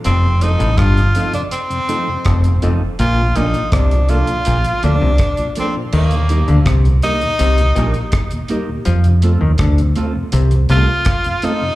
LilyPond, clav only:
\new Staff \with { instrumentName = "Clav" } { \clef bass \time 4/4 \key f \mixolydian \tempo 4 = 82 f,8 r16 a,16 g,8 r4. f,8 f,16 r16 | bes,8 bes,16 r16 c8 r8 bes,16 r16 d16 c16 r4 | ees8 r16 d16 c8 r8 c8 bes,16 r4 r16 | f8 r16 ees16 d8 r8 c8 c16 r4 r16 | }